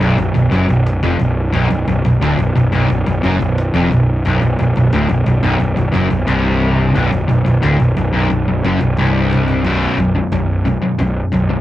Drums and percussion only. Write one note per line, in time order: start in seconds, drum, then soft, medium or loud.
0.01 cajon bass loud
0.18 cajon bass medium
0.35 cajon bass medium
0.52 cajon bass loud
0.69 cajon bass medium
0.86 cajon slap loud
1.03 cajon bass loud
1.20 cajon bass loud
1.54 cajon bass loud
1.71 cajon bass medium
1.88 cajon bass medium
2.05 cajon bass medium
2.23 cajon slap loud
2.39 cajon bass medium
2.56 cajon bass medium
2.73 cajon bass loud
2.90 cajon bass medium
3.07 cajon bass medium
3.24 cajon bass loud
3.41 cajon bass medium
3.58 cajon slap loud
3.74 cajon bass loud
3.91 cajon bass medium
4.25 cajon bass loud
4.42 cajon bass medium
4.59 cajon bass medium
4.76 cajon bass medium
4.93 cajon slap loud
5.09 cajon bass medium
5.26 cajon bass medium
5.43 cajon bass loud
5.60 cajon bass medium
5.77 cajon bass medium
5.94 cajon bass loud
6.11 cajon bass medium
6.28 cajon slap loud
6.96 cajon bass loud
7.13 cajon bass medium
7.29 cajon bass medium
7.46 cajon bass medium
7.63 cajon slap loud
7.80 cajon bass medium
7.97 cajon bass medium
8.30 cajon slap medium
8.65 cajon slap medium
8.81 cajon slap medium
8.97 cajon bass medium
9.31 cajon bass medium
9.48 cajon bass medium
9.65 cajon bass loud
9.98 cajon bass medium
10.32 cajon bass loud
10.32 cajon slap loud
10.66 cajon bass medium
10.99 cajon bass loud
11.33 cajon bass medium